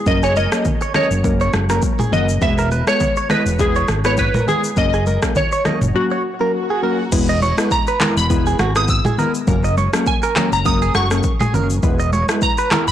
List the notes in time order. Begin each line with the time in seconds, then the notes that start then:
0.06 F#1 F#3 A#3 C#4 A#4 D#5, kick, shaker
0.23 G#4 C#5, shaker
0.36 A#4 D#5, high conga, shaker
0.52 F#3 A#3 C#4 A#4, cross-stick, shaker
0.65 kick, low conga, shaker
0.81 C#5, shaker
0.94 F#3 A#3 C#4 A#4 C#5 D#5, cross-stick, high conga, low conga, shaker
1.11 F#1, shaker
1.24 F#3 A#3 C#4 A#4, kick, shaker
1.40 C#5, shaker
1.53 F#1, cross-stick, high conga, shaker
1.69 F#3 A#3 C#4 A#4, cross-stick, shaker
1.82 kick, shaker
1.99 G#4, mid tom, high conga, shaker
2.12 F#1 F#3 A#3 C#4 F#4 A#4 D#5, low conga, shaker
2.29 shaker
2.41 E1 G#3 B3 E4 B4 E5, kick, shaker
2.58 A#4, shaker
2.71 B4, high conga, shaker
2.87 G#3 B3 E4 B4 C#5, cross-stick, shaker
3.00 kick, low conga, shaker
3.16 C#5, shaker
3.29 G#3 B3 E4 B4 D#5, cross-stick, high conga, low conga, shaker
3.46 E1, shaker
3.59 G#3 B3 E4 G#4 B4, kick, shaker
3.76 C#5, shaker
3.88 G#1, cross-stick, high conga, shaker
4.04 G#3 B3 E4 B4 C#5, cross-stick, shaker
4.17 B4, kick, shaker
4.34 A#4, mid tom, high conga, shaker
4.47 G#3 B3 E4 G#4 B4, low conga, shaker
4.64 shaker
4.76 F#1 F#3 A#3 C#4 A#4 D#5, kick, swell, shaker
4.93 G#4, shaker
5.06 A#4, high conga, shaker
5.22 F#3 A#3 C#4 A#4, kick, cross-stick, shaker
5.35 C#5, kick, low conga, shaker
5.52 C#5, shaker
5.65 F#3 A#3 C#4 A#4 D#5, cross-stick, high conga, low conga, shaker
5.81 F#1, mid tom, shaker
5.94 F#3 A#3 C#4 F#4 A#4
6.11 C#5
6.40 F#3 A#3 C#4 A#4
6.70 G#4
6.83 F#3 A#3 C#4 A#4
7.12 E1 G#3 B3 E4 B4, kick, crash, shaker
7.29 D#5, shaker
7.42 C#5, high conga, shaker
7.58 G#3 B3 E4 B4, cross-stick, high conga, shaker
7.71 A#5, kick, shaker
7.87 B4, shaker
8.00 G#3 B3 E4 A#4 B4, cross-stick, clap, high conga, low conga, shaker
8.17 E1 B5, shaker
8.30 G#3 B3 E4 B4, kick, shaker
8.46 G#4, shaker
8.59 G#1 F#4, cross-stick, high conga, shaker
8.75 G#3 B3 E4 B4 D#6, cross-stick, shaker
8.88 E6, kick, shaker
9.05 G#4, mid tom, high conga, shaker
9.18 G#3 B3 E4 A#4 B4, low conga, shaker
9.35 shaker
9.47 F#1 F#3 A#3 C#4 A#4, kick, shaker
9.64 D#5, shaker
9.77 C#5, high conga, shaker
9.93 F#3 A#3 C#4 A#4, cross-stick, high conga, shaker
10.06 G#5, kick, shaker
10.23 A#4, shaker
10.36 F#3 A#3 C#4 A#4, cross-stick, clap, high conga, low conga, shaker
10.52 F#1 A#5, shaker
10.65 F#3 A#3 C#4 A#4 D#6, kick, shaker
10.82 G#4, shaker
10.95 F#1 F#4 C#6, cross-stick, high conga, shaker
11.11 F#3 A#3 C#4 A#4, cross-stick, shaker
11.23 kick, shaker
11.40 G#4, mid tom, high conga, shaker
11.53 F#1 F#3 A#3 C#4 A#4, low conga, shaker
11.70 shaker
11.83 E1 G#3 B3 E4 B4, kick, shaker
12.00 D#5, shaker
12.13 C#5, high conga, shaker
12.28 G#3 B3 E4 B4, cross-stick, high conga, shaker
12.42 A#5, kick, shaker
12.58 B4, shaker
12.71 G#3 B3 E4 A#4 B4, cross-stick, clap, high conga, low conga, shaker
12.88 E1 B5, shaker